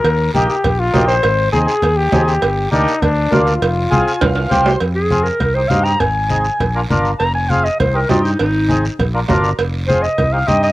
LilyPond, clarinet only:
\new Staff \with { instrumentName = "Clarinet" } { \time 4/4 \key f \dorian \tempo 4 = 201 r1 | r1 | r1 | r1 |
r8 aes'4 bes'4 c''8 f''8 bes''8 | aes''2. r4 | bes''8 aes''8 f''8 ees''8 c''8 bes'8 f'8 ees'8 | ees'2 r2 |
r4 c''8 ees''4 f''8 ees''8 ees''8 | }